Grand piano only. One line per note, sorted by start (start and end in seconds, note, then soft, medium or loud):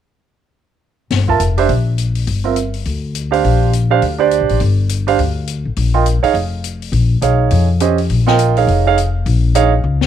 1.28 1.39 F4 medium
1.28 1.39 A#4 medium
1.28 1.39 E5 medium
1.28 1.39 A5 medium
1.58 1.68 D4 medium
1.58 1.68 G4 medium
1.58 1.69 C5 medium
1.58 1.69 E5 medium
2.44 2.55 C4 medium
2.44 2.55 F4 soft
2.44 2.55 A#4 soft
2.44 2.56 E5 medium
3.31 3.70 D4 medium
3.31 3.70 G4 medium
3.31 3.70 C5 soft
3.31 3.70 F5 medium
3.91 4.01 D4 medium
3.91 4.01 G4 medium
3.91 4.01 C5 medium
3.91 4.01 F5 medium
4.18 4.57 D4 medium
4.18 4.58 G4 medium
4.18 4.58 C5 medium
4.18 4.58 D5 medium
5.07 5.17 D4 medium
5.07 5.18 G4 medium
5.07 5.18 C5 medium
5.07 5.18 F5 medium
5.94 6.05 F4 medium
5.94 6.05 A#4 soft
5.94 6.05 D#5 soft
5.94 6.05 G5 medium
6.23 6.33 D#4 medium
6.23 6.34 G#4 soft
6.23 6.33 C#5 medium
6.23 6.34 F5 medium
7.21 7.65 D#4 soft
7.21 7.65 G#4 soft
7.21 7.66 C#5 soft
7.21 7.66 F5 medium
7.81 7.97 C#4 medium
7.81 7.97 G4 medium
7.81 7.97 C5 medium
7.81 7.97 D#5 medium
8.26 8.54 F4 medium
8.26 8.55 A#4 medium
8.26 8.55 D#5 medium
8.26 8.55 G5 medium
8.57 8.84 D#4 medium
8.57 8.84 G#4 medium
8.57 8.84 C#5 soft
8.57 8.84 F5 medium
8.87 8.96 D#4 medium
8.87 8.97 G#4 medium
8.87 8.96 C#5 medium
8.87 8.97 F5 medium
9.55 9.71 D#4 medium
9.55 9.71 G#4 medium
9.55 9.71 C#5 medium
9.55 9.71 F5 medium